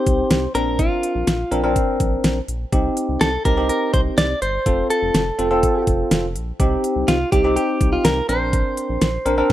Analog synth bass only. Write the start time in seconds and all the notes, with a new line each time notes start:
0.07 C2
0.31 C2
0.55 A#1
1.15 A#1
1.27 A#1
1.52 A#1
2.00 A#1
2.24 A#1
2.48 A#1
2.73 C2
3.09 C2
3.21 C2
3.45 C2
3.94 C2
4.18 C2
4.42 G1
4.66 F1
5.02 F1
5.15 F1
5.39 F1
5.87 F1
6.11 F1
6.35 A#1
6.60 C2
6.96 C2
7.08 C2
7.32 C2
7.81 C2
8.05 C2
8.29 A#1
8.89 A#1
9.01 A#1
9.26 A#1